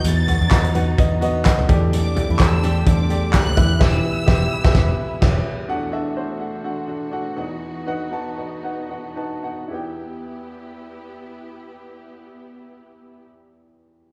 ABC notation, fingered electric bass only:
X:1
M:4/4
L:1/16
Q:"Swing 16ths" 1/4=125
K:Em
V:1 name="Fingered electric bass" clef=bass
E,,3 E,, E,,4 E,,6 E,,2- | E,,3 E,, E,,4 E,,6 E,,2 | E,,,2 z2 E,,,2 z E,,, E,,,2 z2 E,,,2 z2 | z16 |
z16 | z16 | z16 |]